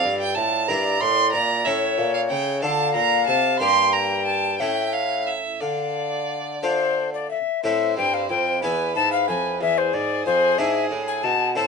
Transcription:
Already playing: D4 F4 A4 D5 F5
0.04 G2
0.20 G5
0.35 A2 A5
0.68 G2 D4 E4 A#4 D5 A#5
1.01 A2 C6
1.32 A#2 A#5
1.65 A2 C#4 E4 A4 C#5 E5
1.98 A#2
2.14 F5
2.30 C#3 G5
2.62 D3 D4 F4 A4 F5 A5
2.94 A#2 A#5
3.27 C3 A5
3.60 G2 A#3 D4 G4 G5 C6
3.93 A#5
4.25 A5
4.59 A2 A3 C#4 E4 E5 G5
4.93 F5
5.26 E5
5.60 D3 D5 F5
6.63 A3 D4 F4 C5
7.14 D5
7.30 E5
7.63 A2 C4 E4 A4 C5 E5
7.97 G2 G5
8.14 F5
8.30 F2 G5
8.62 E2 B3 E4 B4 G#5
8.95 G#2 A5
9.12 F5
9.28 F2 G#5
9.60 E2 G#4 E5
9.78 C5
9.93 G#2 D5
10.26 F2 C5
10.58 G#2 D4 E4 G#4 E5
10.91 A2
11.08 G#5
11.23 B2 A5
11.56 A2 C4 E4 A4 C5 A5

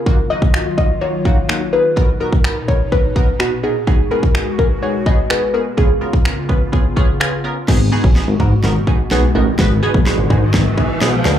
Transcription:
Already playing: A#4
0.06 D#3 F#3 A#3 D#4 F4 F#4, kick
0.30 A#3 D#4 F4 F#4 D#5
0.42 kick
0.54 A#3 D#4 F4 F#4, finger snap
0.78 A#3 D#4 F4 F#4 D#5, kick
1.01 A#3 D#4 F4 F#4 C#5
1.25 A#3 D#4 F4 F#4, kick
1.49 A#3 D#4 F4 F#4, finger snap
1.73 A#3 D#4 F4 G#4 B4
1.96 A#2 B2 B3 D#4 F#4 A#4, kick
2.20 B3 D#4 F#4 A#4
2.33 kick
2.44 B3 D#4 F#4 A#4, finger snap
2.68 B3 D#4 F#4 A#4 C#5, kick
2.92 B3 D#4 F#4 A#4 B4, kick
3.16 B3 D#4 F#4 A#4, kick
3.39 B3 D#4 F#4 B4, finger snap
3.63 B3 D#4 F#4 G#4 A#4
3.87 G#3 B3 D#4 F#4 G#4, kick
4.11 B3 D#4 F#4 G#4 A#4
4.23 kick
4.34 B3 D#4 F#4 G#4, finger snap
4.58 B3 D#4 F#4 G#4 A#4, kick
4.82 B3 D#4 F#4 G#4 C#5
5.06 B3 D#4 F#4 G#4 D#5, kick
5.30 B3 D#4 F#4 G#4 B4, finger snap
5.54 B3 D#4 F#4 G#4 A#4
5.77 C#3 B3 C#4 F4 G#4, kick
6.01 B3 C#4 F4 A#4
6.13 kick
6.25 B3 C#4 F4 A#4, finger snap
6.49 B3 C#4 F4 B4, kick
6.72 B3 C#4 F4 G#4, kick
6.96 B3 C#4 F4 G#4, kick
7.20 B3 C#4 F4 G#4, finger snap
7.44 B3 C#4 F4 A#4
7.68 G#1 B2 G#3 B3 D#4 F#4 G#4, kick, snare, crash, riser
7.92 B3 D#4 F#4 G#4
8.04 B1, kick
8.15 B3 D#4 F#4 G#4, snare
8.28 G#1
8.39 G#2 B3 D#4 F#4 A#4, kick
8.63 G#1 B3 D#4 F#4 A#4, snare
8.87 B3 D#4 F#4 G#4, kick
9.11 B1 B3 D#4 F#4 G#4, snare
9.35 A1 B3 D#4 F#4 A#4
9.59 G#1 B3 D#4 F#4 B4, kick, snare
9.83 B3 D#4 F#4 G#4
9.94 B1, kick
10.06 B3 D#4 F#4 G#4, snare
10.18 G#1
10.30 G#2 B3 D#4 F#4 G#4, kick
10.54 G#1 B3 D#4 F#4 G#4, kick, snare
10.77 B3 D#4 F#4 G#4, kick
11.01 B1 B3 D#4 F#4 G#4, snare
11.25 D2 B3 D#4 F#4 G#4, snare

